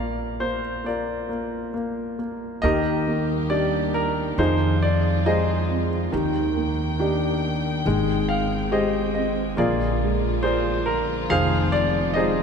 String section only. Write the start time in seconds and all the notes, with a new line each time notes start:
2.64 D#3 G3 A#3 G4
4.37 F3 G#3 C4 F4
6.13 D#3 A#3 G5
7.86 G#3 C4
9.56 D3 F3 A#3 F4
11.30 D#3 F3 G#3 C4